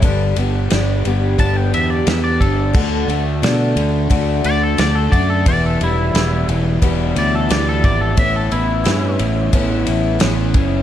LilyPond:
<<
  \new Staff \with { instrumentName = "Clean electric guitar" } { \time 4/4 \key e \dorian \tempo 4 = 88 r2 a''16 g''16 e''16 d''16 e''16 d''16 a'8~ | a'4. r4 d''16 a'16 d''16 a'16 d''16 a'16 | d''16 a'16 e'4 r4 d''16 a'16 d''16 a'16 d''16 a'16 | e''16 a'16 e'4 r2 r8 | }
  \new Staff \with { instrumentName = "Twelve-string acoustic guitar" } { \time 4/4 \key e \dorian <g, d g b d' g'>8 <g b d' g'>8 <g b d' g'>8 <g b d' g'>8 <g, d g b d' g'>4 <g b d' g'>4 | <d a d' fis'>8 <a d' fis'>8 <d a d' fis'>4 <d a d' fis'>4 <d a d' fis'>8 <a d' fis'>8 | <e, b, e g b e'>8 <e g b e'>8 <e g b e'>4 <e, b, e g b e'>4 <e g b e'>4 | <a, e b cis' e'>8 <b cis' e'>8 <e b cis' e'>4 <a, e b cis' e'>4 <e b cis' e'>4 | }
  \new Staff \with { instrumentName = "Overdriven electric guitar" } { \time 4/4 \key e \dorian g,8 b8 d'8 g8 b8 g8 b8 d'8 | d8 a8 d'8 d8 a8 d8 a8 d'8 | e,8 g8 b8 e8 g8 e8 g8 b8 | a,8 b8 cis'8 e8 b8 e8 b8 cis'8 | }
  \new Staff \with { instrumentName = "Fingered electric bass" } { \clef bass \time 4/4 \key e \dorian g,,8 g,,8 g,,8 g,,8 g,,8 e,8 e,8 g,,8 | d,8 d,8 b,8 d,8 d,8 d,8 d,8 fis,8 | e,,8 e,,8 e,,8 e,,8 e,,8 d,8 d,8 gis,,8 | a,,8 a,,8 g,8 a,,8 a,,8 a,,8 a,,8 fis,,8 | }
  \new DrumStaff \with { instrumentName = "Drums" } \drummode { \time 4/4 <bd cymr>8 cymr8 <cymr sn>8 cymr8 <bd cymr>8 cymr8 <cymr sn>8 <bd cymr>8 | <cymc bd>8 cymr8 <cymr sn>8 cymr8 <bd cymr>8 cymr8 <cymr sn>8 <bd cymr>8 | <bd cymr>8 cymr8 <cymr sn>8 cymr8 <bd cymr>8 cymr8 <cymr sn>8 <bd cymr>8 | <bd cymr>8 cymr8 <cymr sn>8 cymr8 <bd cymr>8 cymr8 <cymr sn>8 <bd cymr>8 | }
>>